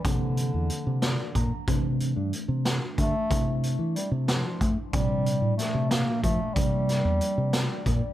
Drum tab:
HH |xxxxx|xxxxx|xxxxx|xxxxx|
SD |---o-|---o-|---o-|--oo-|
BD |o---o|o---o|o---o|o---o|

HH |xxxxx|
SD |-o-o-|
BD |o---o|